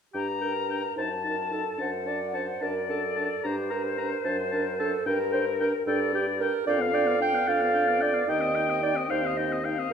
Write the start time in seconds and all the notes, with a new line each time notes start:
0.14 G2 D4 G4 G5 A#5
0.41 D4 A#4 G5
0.69 D4 G5
0.96 F#2 D#4 C5 A5
1.24 D#4 A#4 A5
1.51 D#4 A4 A5
1.78 F#2 D4 C5 F#5 A5
2.05 D4 D5 A5
2.33 D4 C5 A5
2.61 F#2 D4 A#4 D5 A5
2.90 D4 A4 A5
3.16 D4 A5
3.44 G2 D4 G4 C5 A#5
3.70 D4 A#4 A#5
3.98 D4 A#5
4.25 F#2 D4 C5 A5
4.52 D4 A#4 A5
4.79 D4 A4 A5
5.06 G2 D4 A#4 G5
5.33 D4 C5 G5
5.60 D4 A#4 G5
5.87 G2 D4 A4 D5 G5
6.13 D4 G4 G5
6.40 D4 A#4 G5
6.66 F2 D4 D5 F5 G5
6.80 B3 F5
6.92 D4 D5 G5
7.06 B3 F5
7.19 D4 G5
7.33 B3 F5
7.46 F2 D4 D5 F5 G5
7.60 B3 F5
7.74 D4 G5
7.86 B3 F5
8.00 D4 D5 G5
8.13 B3 F5
8.28 D#2 D#4 D#5 G5
8.41 C4 D#5
8.55 D#4 G5
8.68 C4 D#5
8.82 D#4 D5 G5
8.95 C4 D#5
9.08 D#2 D#4 C5 F5 G5
9.23 C4 D#5
9.36 D#4 D#5 G5
9.50 C4 D#5
9.63 D#4 F5 G5
9.78 C4 D#5